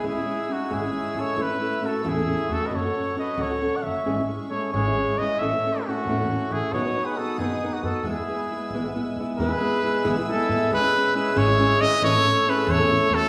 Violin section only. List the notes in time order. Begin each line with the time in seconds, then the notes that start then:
Already playing: G#5
0.03 C#5 E6
1.40 E5
2.71 A4 F#5 C#6
4.05 G#4 E5
5.40 A4 C#6
6.73 B4 F#5 D#6
8.03 B4 G#5 E6
9.36 B4 G#5 E6
10.71 C#5 E6
12.04 A5 E6